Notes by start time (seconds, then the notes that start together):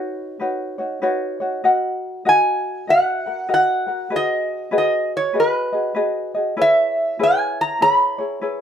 Already playing: D#4 F#4 B4 C#5 B5
0.40 D#4 F#4 B4 C#5
0.78 D#4 F#4 C#5
1.02 D#4 F#4 B4 C#5
1.40 D#4 F#4 C#5
1.64 F#4 A#4 D#5 F#5
2.25 F#4 A#4 D#5 F#5 G#5
2.87 F#4 A#4 D#5 F#5
3.26 F#4 A#4 F#5
3.49 F#4 A#4 D#5 F#5
3.54 F#5
3.87 F#4 A#4 F#5
4.10 F#4 G#4 B4 D#5
4.16 D#5
4.71 F#4 G#4 B4 D#5
4.78 D#5
5.17 C#5
5.33 F#4 G#4 B4 D#5
5.40 B4
5.73 F#4 G#4 D#5
5.95 F#4 G#4 B4 D#5
6.34 F#4 G#4 D#5
6.57 E4 G#4 B4 C#5
6.61 E5
7.19 E4 G#4 B4 C#5
7.23 G#5
7.61 A#5
7.81 E4 G#4 B4 C#5 B5
8.18 E4 G#4 C#5
8.41 E4 G#4 B4 C#5